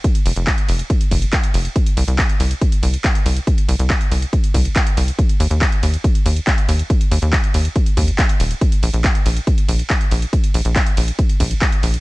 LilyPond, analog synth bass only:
\new Staff \with { instrumentName = "Analog synth bass" } { \clef bass \time 4/4 \key c \minor \tempo 4 = 140 r8 f,,16 f,,16 r8 f,,16 r8. f,,16 r8. f,,16 r16 | r8 c,16 c,16 r8 c,16 r8. c,16 r8. c,16 r16 | r8 c,16 c,16 r8 c,16 r8. c,16 r8. c,16 r16 | r8 ees,16 ees,16 r8 ees,16 r8. ees,16 r8. ees,16 r16 |
r8 ees,16 ees,16 r8 ees,16 r8. ees,16 r8. ees,,16 r16 | r8 bes,,16 bes,,16 r8 bes,,16 r8. bes,,16 r8. bes,,16 r16 | r8 bes,,16 bes,,16 r8 bes,,16 r8. bes,,16 r8. bes,,16 r16 | }